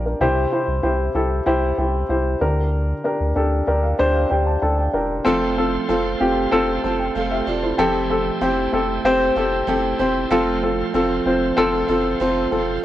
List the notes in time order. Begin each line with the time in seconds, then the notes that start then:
Already playing: A#1 D4 F4 G4 A4 A#4 C5 D5 F5
0.06 D4 A#4
0.20 C2 C3 E4 G4 C5
0.52 E4 G4 C5
0.68 C2
0.83 C2 E4 G4 C5
1.15 C2 E4 G4 A4
1.46 C2 E4 G4 C5
1.78 C2 E4 G4 C5
2.09 C2 E4 G4 C5
2.41 D2 D3 D4 G4 A#4
3.04 D4 G4 A#4
3.20 D2
3.35 D2 D4 G4 A4
3.67 D2 D4 G4 A#4 D5
3.83 F5
3.99 D2 D4 G4 C5 G5
4.15 F5
4.30 D2 D4 G4 C5 G5
4.47 A5
4.62 D2 D4 G4 A4 A5
4.78 G5
4.93 E1 D4 G4 A#4 A#5
5.24 F1 F3 A3 C4 F4 A4 C5 F5 C6
5.57 C4 F4 A4
5.89 F1 A3 C4 F4 A4
6.20 F1 C4 F4 G4
6.51 F1 C4 F4 A4
6.84 F1 C4 F4 A4 C5 A5
6.99 G5
7.15 F1 A3 C4 F4 A4 F5
7.31 G4 E5
7.47 E1 C4 F4 A4 D5
7.63 E4 C5
7.78 F1 F3 A3 C4 E4 G4 A4 E5 G5
8.10 C4 G4 A4
8.41 F1 A3 C4 E4 G4 C5
8.73 F1 C4 G4 A4
9.04 F1 C4 G4 C5
9.36 F1 C4 E4 G4 A4
9.67 F1 A3 C4 E4 G4 A4
9.99 E1 C4 E4 G4 C5
10.30 F1 F3 A3 C4 F4 A4 C5 F5
10.62 C4 F4 A4
10.94 F1 A3 C4 F4 A4
11.26 F1 C4 F4 C5
11.57 F1 C4 F4 A4
11.89 F1 C4 F4 A4
12.20 F1 A3 C4 F4 A4 C5
12.51 E1 C4 F4 A4